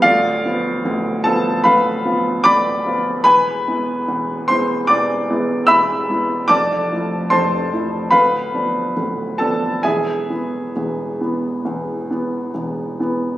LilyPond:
<<
  \new Staff \with { instrumentName = "Grand piano" } { \time 4/4 \key e \phrygian \tempo 4 = 74 <f' d'' f''>4. <a' a''>8 <b' f'' b''>4 <d'' b'' d'''>4 | <b' gis'' b''>4. <c'' c'''>8 <d'' d'''>4 <e'' b'' e'''>4 | <d'' a'' d'''>4 <c'' a'' c'''>4 <b' f'' b''>4. <a' a''>8 | <gis' e'' gis''>2. r4 | }
  \new Staff \with { instrumentName = "Grand piano" } { \clef bass \time 4/4 \key e \phrygian <d,, d,>8 <f b f'>8 <d,, d,>8 <f b f'>8 <d,, d,>8 <f b f'>8 <d,, d,>8 <f b f'>8 | <e,, e,>8 <gis b e'>8 <e,, e,>8 <gis b e'>8 <e,, e,>8 <gis b e'>8 <e,, e,>8 <gis b e'>8 | <f,, f,>8 <f a e'>8 <f,, f,>8 <f a e'>8 <d,, d,>8 <f b d'>8 <d,, d,>8 <f b d'>8 | <e,, e,>8 <e b>8 <e,, e,>8 <e b>8 <e,, e,>8 <e b>8 <e,, e,>8 <e b>8 | }
>>